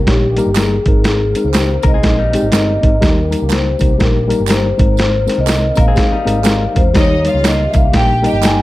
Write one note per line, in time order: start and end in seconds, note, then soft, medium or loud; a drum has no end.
0.00 4.75 D#3 medium
0.00 0.84 G3 medium
0.00 4.75 A#3 medium
0.00 0.84 G4 medium
0.07 0.39 A#1 medium
0.07 0.25 G3 medium
0.07 0.26 A#3 medium
0.07 0.26 D#4 medium
0.07 0.59 G4 medium
0.07 0.26 C#5 medium
0.07 kick medium
0.07 snare loud
0.07 closed hi-hat medium
0.36 0.49 G3 medium
0.36 0.49 A#3 medium
0.36 0.49 D#4 medium
0.36 0.49 A#4 loud
0.36 closed hi-hat medium
0.36 tambourine medium
0.46 0.78 G1 medium
0.55 0.75 G3 medium
0.55 0.75 A#3 medium
0.55 0.75 D#4 medium
0.55 1.07 G#4 medium
0.55 0.75 A#4 loud
0.55 snare loud
0.55 clap medium
0.55 closed hi-hat medium
0.55 tambourine medium
0.86 1.33 G#1 medium
0.86 1.24 G#3 medium
0.86 3.00 C4 medium
0.86 1.24 C4 medium
0.86 1.24 D#4 medium
0.86 3.00 A#4 medium
0.86 1.25 A#4 medium
0.86 kick loud
0.86 closed hi-hat medium
1.04 1.47 G#4 medium
1.04 snare loud
1.04 closed hi-hat medium
1.04 tambourine soft
1.35 1.47 G#3 medium
1.35 1.47 C4 medium
1.35 1.48 D#4 medium
1.35 1.48 A#4 medium
1.35 closed hi-hat medium
1.35 tambourine medium
1.45 1.76 C#2 medium
1.45 1.87 C5 medium
1.53 1.72 G#3 medium
1.53 1.73 C4 medium
1.53 1.73 D#4 medium
1.53 1.73 G4 medium
1.53 snare loud
1.53 clap medium
1.53 closed hi-hat medium
1.53 tambourine medium
1.83 2.00 C2 loud
1.83 1.96 G#3 medium
1.83 1.96 C4 medium
1.83 1.96 D#4 medium
1.83 1.93 A#4 medium
1.83 1.96 A#4 medium
1.83 kick medium
1.83 closed hi-hat medium
1.83 tambourine medium
1.87 2.54 D#5 medium
1.94 2.18 C4 medium
1.94 2.17 G#4 medium
2.02 2.35 A#1 loud
2.02 2.22 G#3 medium
2.02 2.22 C4 medium
2.02 2.22 D#4 medium
2.02 2.22 A#4 medium
2.02 kick medium
2.02 snare loud
2.02 closed hi-hat medium
2.02 tambourine soft
2.19 2.89 G3 medium
2.19 2.89 D#4 medium
2.33 2.45 G#3 medium
2.33 2.46 C4 medium
2.33 2.46 D#4 medium
2.33 2.46 G4 medium
2.33 closed hi-hat medium
2.33 tambourine medium
2.42 2.50 G#1 medium
2.52 2.77 G1 medium
2.52 2.71 G#3 medium
2.52 2.71 C4 medium
2.52 2.71 D#4 medium
2.52 2.72 A#4 loud
2.52 snare loud
2.52 clap loud
2.52 closed hi-hat medium
2.52 tambourine medium
2.56 3.05 D#5 medium
2.81 2.98 G#1 medium
2.81 2.94 G#3 medium
2.81 2.94 C4 medium
2.81 2.95 D#4 medium
2.81 2.95 A#4 medium
2.81 kick medium
2.81 closed hi-hat medium
3.00 3.34 D#2 loud
3.00 3.20 G3 medium
3.00 4.78 G3 medium
3.00 3.20 A#3 medium
3.00 3.20 D#4 medium
3.00 4.78 G4 medium
3.00 3.20 A#4 loud
3.00 kick loud
3.00 snare loud
3.00 closed hi-hat medium
3.00 tambourine soft
3.05 3.54 A#4 medium
3.30 3.43 G3 medium
3.30 3.43 A#3 medium
3.30 3.43 D#4 medium
3.30 3.43 A#4 medium
3.30 closed hi-hat medium
3.30 tambourine medium
3.42 3.73 C#2 medium
3.48 3.68 G3 medium
3.48 3.69 A#3 medium
3.48 3.69 D#4 medium
3.48 3.69 A#4 medium
3.48 clap medium
3.48 closed hi-hat medium
3.48 tambourine medium
3.53 4.03 C5 medium
3.53 snare loud
3.79 3.96 C2 medium
3.79 3.92 G3 medium
3.79 3.92 A#3 medium
3.79 3.92 D#4 medium
3.79 3.92 A#4 medium
3.79 kick medium
3.79 closed hi-hat medium
3.79 tambourine medium
3.98 4.32 A#1 medium
3.98 4.18 G3 medium
3.98 4.18 A#3 medium
3.98 4.18 D#4 medium
3.98 4.18 A#4 medium
3.98 kick medium
3.98 snare loud
3.98 closed hi-hat medium
3.98 tambourine soft
4.03 4.52 A#4 medium
4.28 4.41 G3 medium
4.28 4.41 A#3 medium
4.28 4.41 D#4 medium
4.28 4.42 A#4 loud
4.28 closed hi-hat medium
4.28 tambourine medium
4.40 4.71 G1 medium
4.47 4.67 G3 medium
4.47 4.67 A#3 medium
4.47 4.68 D#4 medium
4.47 4.68 A#4 loud
4.47 snare loud
4.47 clap medium
4.47 closed hi-hat medium
4.47 tambourine medium
4.52 4.99 C5 medium
4.77 5.26 G#1 medium
4.77 8.62 D#3 medium
4.77 5.15 G#3 medium
4.77 8.62 A#3 medium
4.77 5.16 C4 medium
4.77 6.93 C4 medium
4.77 5.16 D#4 medium
4.77 6.93 A#4 medium
4.77 5.16 A#4 medium
4.77 kick loud
4.77 closed hi-hat medium
4.77 tambourine soft
4.97 5.40 C5 medium
4.97 snare loud
4.97 closed hi-hat medium
4.97 tambourine soft
5.26 5.39 G#3 medium
5.26 5.40 C4 medium
5.26 5.40 D#4 medium
5.26 5.40 A#4 medium
5.26 snare soft
5.26 closed hi-hat medium
5.26 tambourine medium
5.38 5.70 C2 medium
5.38 5.80 D#5 medium
5.46 5.65 G#3 medium
5.46 5.66 C4 medium
5.46 5.66 D#4 medium
5.46 5.66 A#4 medium
5.46 snare loud
5.46 clap medium
5.46 closed hi-hat medium
5.46 tambourine medium
5.75 5.93 A#1 medium
5.75 5.89 G#3 medium
5.75 5.89 C4 medium
5.75 5.89 D#4 medium
5.75 5.89 A#4 medium
5.75 5.87 A#4 medium
5.75 kick medium
5.75 closed hi-hat medium
5.75 tambourine medium
5.79 6.80 F5 medium
5.88 6.11 C4 medium
5.88 6.11 G#4 medium
5.95 6.14 G#3 medium
5.95 6.14 C4 medium
5.95 6.15 D#4 medium
5.95 6.15 G#4 medium
5.95 kick medium
5.95 snare loud
5.95 closed hi-hat medium
5.95 tambourine soft
6.12 6.83 G3 medium
6.12 6.82 D#4 medium
6.12 muted picked electric bass stroke soft
6.25 6.66 G#1 medium
6.25 6.38 G#3 medium
6.25 6.38 C4 medium
6.25 6.39 D#4 medium
6.25 6.39 A#4 loud
6.25 closed hi-hat medium
6.25 tambourine medium
6.44 6.63 G#3 loud
6.44 6.64 C4 medium
6.44 6.64 D#4 medium
6.44 6.64 A#4 loud
6.44 snare loud
6.44 clap medium
6.44 closed hi-hat medium
6.44 tambourine medium
6.75 6.91 E2 medium
6.75 6.87 G#3 medium
6.75 6.88 C4 medium
6.75 6.88 D#4 medium
6.75 6.88 A#4 medium
6.75 6.97 C5 medium
6.75 kick medium
6.75 closed hi-hat medium
6.75 tambourine soft
6.94 7.27 D#2 loud
6.94 7.13 G3 medium
6.94 8.62 G3 medium
6.94 7.13 A#3 medium
6.94 7.14 D#4 medium
6.94 7.19 D#4 medium
6.94 8.62 G4 medium
6.94 7.14 A#4 loud
6.94 7.19 D#5 loud
6.94 kick loud
6.94 snare loud
6.94 closed hi-hat medium
6.94 tambourine medium
6.98 7.43 C#5 loud
7.24 7.37 G3 medium
7.24 7.37 A#3 medium
7.24 7.37 D#4 medium
7.24 7.72 F4 medium
7.24 7.38 A#4 medium
7.24 7.72 F5 loud
7.24 closed hi-hat medium
7.24 tambourine medium
7.34 7.66 C#2 medium
7.43 7.62 G3 medium
7.43 7.62 A#3 medium
7.43 7.63 D#4 medium
7.43 7.63 A#4 medium
7.43 snare loud
7.43 clap medium
7.43 closed hi-hat medium
7.43 tambourine medium
7.47 7.69 D#5 medium
7.68 7.75 E5 medium
7.72 7.90 C2 medium
7.72 7.85 G3 medium
7.72 7.86 A#3 medium
7.72 7.86 D#4 medium
7.72 7.86 A#4 medium
7.72 kick loud
7.72 closed hi-hat medium
7.72 tambourine medium
7.77 7.95 F5 medium
7.92 8.25 A#1 medium
7.92 8.12 G3 medium
7.92 8.12 A#3 medium
7.92 8.12 D#4 medium
7.92 8.18 G4 loud
7.92 8.12 A#4 medium
7.92 8.18 G5 loud
7.92 8.25 G5 loud
7.92 kick medium
7.92 snare loud
7.92 closed hi-hat medium
7.92 tambourine soft
8.22 8.35 G3 medium
8.22 8.35 A#3 medium
8.22 8.35 D#4 medium
8.22 8.62 G4 loud
8.22 8.36 A#4 loud
8.22 8.33 D#5 medium
8.22 8.62 G5 loud
8.22 closed hi-hat medium
8.22 tambourine medium
8.33 8.62 G1 medium
8.41 8.61 G3 medium
8.41 8.61 A#3 medium
8.41 8.61 D#4 medium
8.41 8.62 A#4 loud
8.41 8.62 G#5 medium
8.41 snare loud
8.41 clap loud
8.41 closed hi-hat medium
8.41 tambourine loud